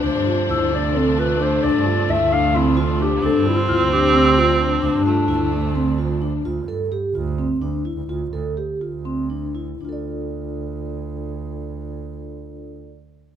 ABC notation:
X:1
M:7/8
L:1/16
Q:1/4=129
K:Dm
V:1 name="Celesta"
z4 e'8 z2 | z12 z2 | z4 f'4 e'6- | e'2 z12 |
z12 z2 | z12 z2 | z12 z2 | z12 z2 |]
V:2 name="Clarinet"
c6 d2 A2 =B2 c2 | d4 e2 f2 E2 F2 G2 | A2 F4 G4 F2 z2 | D8- D2 z4 |
z12 z2 | z12 z2 | z12 z2 | z12 z2 |]
V:3 name="Vibraphone"
D2 F2 E2 D2 C2 F2 D2 | D2 F2 E2 D2 C2 F2 D2 | D2 F2 E2 D2 C2 F2 D2 | D2 F2 E2 D2 C2 F2 D2 |
F2 A2 G2 F2 C2 D2 E2 | F2 A2 G2 F2 C2 D2 E2 | [DFAd]12- [DFAd]2- | [DFAd]12- [DFAd]2 |]
V:4 name="Viola"
A,12- A,2- | A,12- A,2 | C12- C2- | C2 A,8- A,2 z2 |
z12 z2 | z12 z2 | z12 z2 | z12 z2 |]
V:5 name="String section" clef=bass
[C,F,D]12- [C,F,D]2- | [C,F,D]12- [C,F,D]2- | [C,F,D]12- [C,F,D]2- | [C,F,D]12- [C,F,D]2 |
z12 z2 | z12 z2 | z12 z2 | z12 z2 |]
V:6 name="Double bass" clef=bass
D,, G,,2 z D,, D,,8- D,, | D,, G,,2 z D,, D,,8- D,, | D,, G,,2 z D,, D,,8- D,, | D,, G,,2 z D,, D,,8- D,, |
D,,2 G,,2 z2 D,,4 D,,3 D,, | D,,2 D,,2 z2 D,,8 | D,,12- D,,2- | D,,12- D,,2 |]